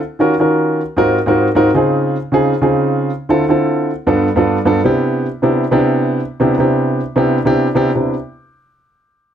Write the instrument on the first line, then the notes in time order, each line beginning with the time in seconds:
grand piano
0.19 D#3 C#4 F4 F#4 A#4
0.39 D#3 C#4 F4 F#4 A#4
0.97 G#2 C4 D#4 F4 F#4 A#4
1.26 G#2 C4 D#4 F4 F#4 A#4
1.55 G#2 C4 D#4 F4 F#4 A#4
1.74 C#3 C4 D#4 F4 G#4
2.32 C#3 C4 D#4 F4 G#4
2.62 C#3 C4 D#4 F4 G#4
3.29 D3 C4 E4 F4 A4
3.48 D3 C4 E4 F4 A4
4.07 G2 B3 D4 F4 A4
4.36 G2 B3 D4 F4 A4
4.65 G2 B3 D4 F4 A4
4.84 C3 B3 D4 E4 G4
5.42 C3 B3 D4 E4 G4
5.71 C3 B3 D4 E4 G4
6.40 C3 B3 D4 E4 G4
6.58 C3 B3 D4 E4 G4
7.16 C3 B3 D4 E4 G4
7.45 C3 B3 D4 E4 G4
7.75 C3 B3 D4 E4 G4
7.95 C3 B3 D4 E4 G4